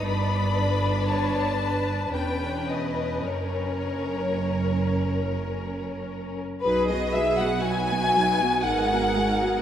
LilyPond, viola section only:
\new Staff \with { instrumentName = "Viola section" } { \time 3/4 \key fis \mixolydian \tempo 4 = 57 d''4 cis''8 b'8 b'4 | ais'2~ ais'8 r8 | <fis dis'>16 <b fis'>16 <fis dis'>16 <b fis'>16 <fis dis'>16 <b fis'>16 <fis dis'>16 <b fis'>16 <gis dis'>16 <b fis'>16 <gis dis'>16 <b fis'>16 | }